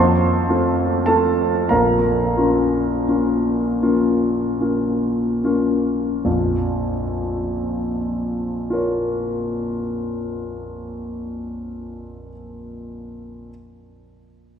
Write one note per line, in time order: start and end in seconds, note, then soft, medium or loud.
0.00 0.46 F2 medium
0.00 1.02 C5 medium
0.00 1.02 A5 medium
0.00 1.06 C6 medium
0.49 1.03 A3 soft
0.49 1.03 C4 soft
0.49 1.03 F4 soft
1.06 1.66 A3 soft
1.06 1.66 C4 soft
1.06 1.67 F4 soft
1.06 1.66 A4 medium
1.06 1.69 A5 medium
1.69 2.35 A#1 soft
1.69 5.39 A#4 soft
1.69 5.39 F5 soft
1.69 5.43 A#5 medium
2.37 3.04 A#3 soft
2.37 3.04 C#4 soft
2.37 3.04 F4 soft
3.08 3.78 A#3 soft
3.08 3.78 C#4 soft
3.08 3.78 F4 soft
3.82 4.56 A#3 soft
3.82 4.56 C#4 soft
3.82 4.56 F4 soft
4.60 5.39 A#3 soft
4.60 5.39 C#4 soft
4.60 5.40 F4 soft
5.44 6.21 A#3 soft
5.44 6.22 C#4 soft
5.44 6.22 F4 soft
6.25 9.82 A#1 soft
6.25 9.82 F2 soft
8.70 12.27 F4 soft
8.70 12.29 A#4 soft
8.70 12.31 C#5 soft